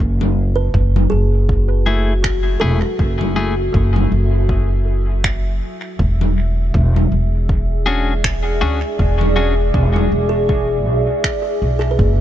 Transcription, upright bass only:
0.00 0.71 F#1 medium
0.74 1.08 F#1 medium
1.12 2.59 F#1 medium
2.62 2.81 E1 medium
2.99 3.71 F#1 medium
3.74 4.08 F#1 medium
4.12 5.59 F#1 medium
5.99 6.71 E1 medium
6.74 7.08 E1 medium
7.12 8.59 E1 medium
8.62 8.81 D2 medium
8.99 9.71 E1 medium
9.74 10.08 E1 medium
10.12 10.87 E1 medium
10.87 11.06 B1 medium
11.62 11.95 B1 medium
11.99 12.21 F#1 medium

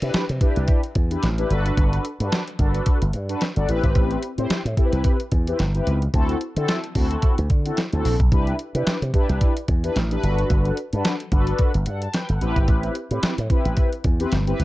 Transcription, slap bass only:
0.02 0.11 C3 loud
0.14 muted slap bass stroke soft
0.30 0.38 C3 medium
0.57 0.65 C2 medium
0.96 1.15 E2 medium
1.23 1.43 A1 medium
1.50 1.70 G1 medium
1.78 1.97 G1 loud
2.20 2.29 G2 loud
2.59 2.79 G1 medium
3.02 3.11 G1 medium
3.14 3.34 G2 loud
3.57 3.65 G1 medium
3.68 3.79 A1 medium
3.84 3.92 G#1 medium
3.96 4.15 A1 loud
4.38 4.47 A2 medium
4.50 muted slap bass stroke medium
4.65 4.74 A2 medium
4.93 5.01 C2 medium
5.32 5.52 E2 medium
5.59 5.79 G1 loud
5.87 6.07 C#2 medium
6.14 6.34 D2 loud
6.57 6.65 D3 medium
6.95 7.15 D2 medium
7.38 7.47 D2 medium
7.50 7.70 D3 medium
7.93 8.02 D2 medium
8.05 8.16 A#1 medium
8.20 8.29 B1 medium
8.32 8.52 C2 loud
8.75 8.83 C3 medium
8.87 muted slap bass stroke soft
9.02 9.11 C3 medium
9.29 9.38 C2 medium
9.68 9.88 E2 medium
9.96 10.16 A1 loud
10.23 10.43 G1 medium
10.50 10.70 G1 loud
10.93 11.02 G2 loud
11.32 11.52 G1 medium
11.75 11.83 G1 medium
11.87 12.07 G2 loud
12.29 12.38 G1 medium
12.41 12.52 A1 medium
12.56 12.65 G#1 medium
12.68 12.88 A1 loud
13.11 13.20 A2 loud
13.23 muted slap bass stroke soft
13.38 13.47 A2 medium
13.65 13.74 A1 medium
14.05 14.24 E2 medium
14.32 14.52 G1 medium
14.59 14.64 C#2 medium

